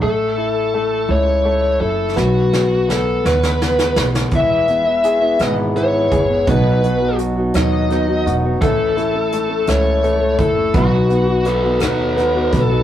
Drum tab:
HH |------------|------------|x-x-x-x-x-x-|x-x-x-x-x-x-|
SD |------------|o-o-o-oooooo|------r-----|------r-r---|
BD |------------|------------|o---------o-|o-----------|

HH |x-x-x-x-x-x-|x-x-x-x-x-x-|
SD |------r-----|----r-r-r---|
BD |o---------o-|o---------o-|